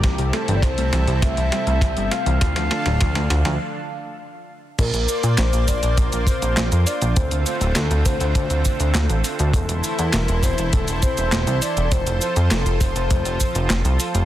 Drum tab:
CC |----------------|----------------|x---------------|----------------|
HH |xxxxxxxxxxxxxxxx|xxxxxxxx--------|xxoxxxoxxxoxxxox|xxoxxxoxxxoxxxox|
SH |----------------|----------------|xxxxxxxxxxxxxxxx|xxxxxxxxxxxxxxxx|
CP |----------------|----------------|----x-------x---|----x-------x---|
SD |o-o-o-o-o-o-o-o-|oooooooo--------|----o-------o---|----o-------o---|
BD |o---o---o---o---|o---o-----------|o-----o-o-o-----|o-----o-o-o-----|

CC |----------------|----------------|
HH |xxoxxxoxxxoxxxox|xxoxxxoxxxoxxxox|
SH |xxxxxxxxxxxxxxxx|xxxxxxxxxxxxxxxx|
CP |----x-------x---|----x-------x---|
SD |----o-------o---|----o-------o---|
BD |o-----o-o-o-----|o-----o-o-o-----|